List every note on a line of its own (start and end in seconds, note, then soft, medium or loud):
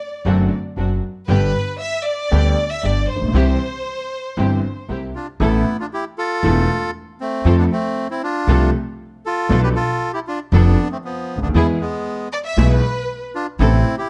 0.00 0.52 D5 medium
0.25 0.47 F#1 medium
0.25 0.48 F#2 medium
0.25 0.48 D3 medium
0.25 0.48 F#3 medium
0.25 0.47 A3 medium
0.25 0.48 C4 medium
0.25 0.48 D4 medium
0.25 0.48 F#4 medium
0.76 0.99 F#1 medium
0.76 0.99 F#2 medium
0.76 0.99 F#3 medium
0.76 0.99 C4 medium
0.76 0.99 D4 medium
0.76 0.99 F#4 medium
1.28 1.50 G1 loud
1.28 1.50 G1 medium
1.28 1.50 G2 medium
1.28 1.50 D3 medium
1.28 1.50 G3 medium
1.28 1.50 B3 medium
1.28 1.50 D4 medium
1.28 1.50 G4 medium
1.28 1.51 G4 medium
1.28 1.76 B4 loud
1.81 2.06 E5 medium
2.05 2.70 D5 loud
2.31 2.53 D2 medium
2.31 2.53 D3 medium
2.31 2.53 G3 medium
2.31 2.53 B3 medium
2.31 2.53 D4 medium
2.31 2.53 G4 medium
2.71 2.83 E5 medium
2.82 3.04 G1 soft
2.82 3.05 G1 medium
2.82 3.04 G2 soft
2.82 3.04 B3 medium
2.82 3.04 D4 soft
2.82 3.04 G4 medium
2.82 3.10 D5 medium
3.10 4.90 C5 medium
3.16 3.21 A1 soft
3.16 3.22 A1 soft
3.22 3.28 A#1 medium
3.28 3.34 B1 medium
3.28 3.33 B1 medium
3.33 3.55 C2 medium
3.33 3.56 C2 medium
3.33 3.56 C3 medium
3.33 3.56 E3 medium
3.33 3.56 G3 medium
3.33 3.56 C4 medium
3.33 3.56 E4 medium
3.33 3.56 G4 medium
4.37 4.59 G1 medium
4.37 4.59 G2 medium
4.37 4.59 E3 medium
4.37 4.59 G3 medium
4.37 4.59 C4 medium
4.37 4.59 E4 medium
4.37 4.59 G4 medium
4.89 5.10 C2 medium
4.89 5.10 C2 soft
4.89 5.10 C3 medium
4.89 5.11 C4 medium
4.89 5.11 E4 soft
4.89 5.11 G4 medium
5.15 5.27 D4 medium
5.15 5.27 F4 medium
5.40 5.62 A1 loud
5.40 5.62 A1 medium
5.40 5.62 A2 medium
5.40 5.62 E3 medium
5.40 5.62 A3 medium
5.40 5.62 B3 medium
5.40 5.77 B3 medium
5.40 5.62 E4 medium
5.40 5.77 E4 medium
5.40 5.62 A4 medium
5.80 5.87 D4 medium
5.80 5.85 F4 medium
5.93 6.05 E4 medium
5.93 6.04 G4 loud
6.18 6.91 F4 medium
6.18 6.91 A4 loud
6.43 6.65 E1 loud
6.43 6.65 E1 medium
6.43 6.65 E2 medium
6.43 6.65 E3 medium
6.43 6.65 A3 medium
6.43 6.65 B3 medium
6.43 6.65 E4 medium
6.43 6.65 A4 medium
7.21 7.57 A3 medium
7.21 7.56 C4 medium
7.45 7.67 F2 medium
7.45 7.67 F3 medium
7.45 7.67 A3 medium
7.45 7.67 C4 medium
7.45 7.67 F4 medium
7.45 7.67 A4 medium
7.58 7.65 B3 medium
7.58 7.64 D4 medium
7.72 8.08 A3 medium
7.72 8.07 C4 loud
8.10 8.22 C4 medium
8.10 8.22 E4 medium
8.24 8.71 D4 medium
8.24 8.71 F4 loud
8.47 8.69 C2 loud
8.47 8.70 C2 loud
8.47 8.70 C3 loud
8.47 8.70 F3 medium
8.47 8.70 A3 medium
8.47 8.69 C4 medium
8.47 8.70 C4 medium
8.47 8.70 F4 medium
8.47 8.70 A4 medium
9.26 9.62 F4 medium
9.26 9.61 A4 loud
9.49 9.71 B1 loud
9.49 9.72 B1 medium
9.49 9.72 B2 loud
9.49 9.72 F3 medium
9.49 9.71 B3 medium
9.49 9.72 B3 medium
9.49 9.72 D4 medium
9.49 9.72 A4 medium
9.63 9.69 G4 medium
9.63 9.69 B4 loud
9.76 10.12 F4 medium
9.76 10.11 A4 loud
10.13 10.20 E4 medium
10.13 10.19 G4 medium
10.27 10.40 D4 medium
10.27 10.39 F4 medium
10.52 10.74 F1 loud
10.52 10.74 F1 medium
10.52 10.74 F2 medium
10.52 10.74 F3 medium
10.52 10.74 B3 medium
10.52 10.89 B3 medium
10.52 10.88 D4 loud
10.52 10.74 D4 medium
10.52 10.74 A4 medium
10.52 10.75 A4 loud
10.92 10.98 A3 medium
10.92 10.97 C4 medium
11.04 11.40 F3 medium
11.04 11.40 B3 medium
11.36 11.42 C#2 medium
11.36 11.43 C#2 medium
11.42 11.47 D2 medium
11.42 11.49 D2 medium
11.42 11.48 B3 medium
11.42 11.48 D4 medium
11.48 11.54 D#2 medium
11.48 11.55 D#2 medium
11.54 11.76 E2 medium
11.54 11.76 E2 loud
11.54 11.76 E3 medium
11.54 11.76 G#3 medium
11.54 11.76 B3 medium
11.54 11.77 B3 medium
11.54 11.67 B3 medium
11.54 11.77 E4 medium
11.54 11.67 E4 loud
11.54 11.76 G#4 medium
11.54 11.77 G#4 loud
11.81 12.28 G#3 medium
11.81 12.29 B3 medium
12.33 12.38 D5 loud
12.46 12.69 E5 medium
12.57 12.79 B1 medium
12.57 12.79 B2 medium
12.57 12.79 E3 medium
12.57 12.79 G#3 medium
12.57 12.79 B3 medium
12.57 12.79 E4 medium
12.57 12.79 G#4 medium
12.73 13.23 B4 medium
13.35 13.47 D4 medium
13.35 13.46 F4 medium
13.59 13.81 A1 loud
13.59 13.82 A1 medium
13.59 13.82 A2 medium
13.59 13.82 C3 medium
13.59 13.82 A3 medium
13.59 13.82 B3 medium
13.59 13.96 C4 medium
13.59 13.82 C4 medium
13.59 13.96 E4 loud
13.59 13.82 E4 medium
13.59 13.82 A4 loud
13.98 14.09 E4 medium
13.98 14.10 G4 medium